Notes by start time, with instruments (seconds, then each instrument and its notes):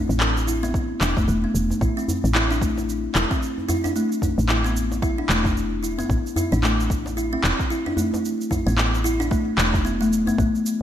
0.09 fm bass A1, djembe tone, cabasa
0.20 clap, cabasa
0.37 djembe slap, cabasa
0.47 kalimba E4, djembe tone, cabasa
0.63 kalimba B3, djembe slap, cabasa
0.74 kick, cabasa
1.01 fm bass E1, kalimba D4, clap, cabasa
1.17 kalimba A3, kick, djembe tone, djembe bass, cabasa
1.28 fm bass E1, kalimba A3, cabasa
1.44 kalimba B3
1.55 fm bass E1, cabasa
1.70 djembe tone, cabasa
1.81 fm bass A1, kalimba E4, kick, cabasa
1.97 kalimba C4, cabasa
2.08 djembe bass, cabasa
2.24 fm bass A1, djembe tone, cabasa
2.35 kalimba E4, clap, cabasa
2.51 kalimba D4, cabasa
2.61 kalimba A3, kick, djembe tone, cabasa
2.78 djembe slap, cabasa
2.89 cabasa
3.15 fm bass E1, kalimba E4, clap, djembe tone, cabasa
3.31 kalimba C4, kick, cabasa
3.43 cabasa
3.58 djembe tone
3.69 kalimba E4, djembe bass, cabasa
3.84 kalimba D4, djembe slap, djembe tone, cabasa
3.96 kalimba A3, cabasa
4.12 cabasa
4.22 kick, djembe bass, cabasa
4.38 fm bass A1, djembe tone, cabasa
4.49 kalimba E4, clap, cabasa
4.64 kalimba B3, djembe slap, cabasa
4.76 djembe tone, cabasa
4.92 djembe slap, cabasa
5.02 kalimba E4, kick, cabasa
5.18 kalimba D4
5.29 fm bass E1, kalimba A3, clap, cabasa
5.44 kick, djembe bass, cabasa
5.57 cabasa
5.83 kalimba E4, cabasa
5.98 kalimba B3, djembe tone, cabasa
6.10 fm bass A1, kick, cabasa
6.26 cabasa
6.36 kalimba E4, djembe bass, cabasa
6.52 fm bass A1, kalimba D4, djembe tone, cabasa
6.63 kalimba A3, clap, cabasa
6.80 cabasa
6.90 kick, djembe tone, cabasa
7.06 djembe slap, cabasa
7.17 kalimba E4, cabasa
7.33 kalimba C4
7.44 fm bass E1, clap, djembe tone, cabasa
7.59 kick, cabasa
7.70 kalimba E4, cabasa
7.86 kalimba D4, djembe tone
7.97 kalimba A3, djembe bass, cabasa
8.13 djembe slap, djembe tone, cabasa
8.25 cabasa
8.41 cabasa
8.51 kalimba E4, kick, djembe bass, cabasa
8.67 fm bass A1, kalimba B3, djembe tone, cabasa
8.78 clap, cabasa
8.94 djembe slap, cabasa
9.04 kalimba E4, djembe tone, cabasa
9.20 kalimba D4, djembe slap, cabasa
9.31 kalimba A3, kick, cabasa
9.58 fm bass E1, clap, cabasa
9.73 kick, djembe tone, djembe bass, cabasa
9.85 kalimba B3, cabasa
10.01 kalimba A3, cabasa
10.13 cabasa
10.27 kalimba B3, djembe tone, cabasa
10.38 fm bass A1, kalimba A3, kick, cabasa
10.55 cabasa
10.66 cabasa